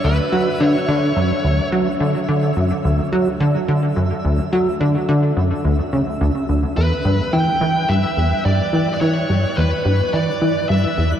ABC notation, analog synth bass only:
X:1
M:4/4
L:1/8
Q:1/4=107
K:D
V:1 name="Analog synth bass" clef=bass
D,, F, D, D, F,, D,, F, D, | D, F,, D,, F, D, D, F,, D,, | F, D, D, F,, D,, C, D,, D,, | E,, G,, E, E, G,, E,, G,, E, |
E, G,, E,, G,, E, E, G,, E,, |]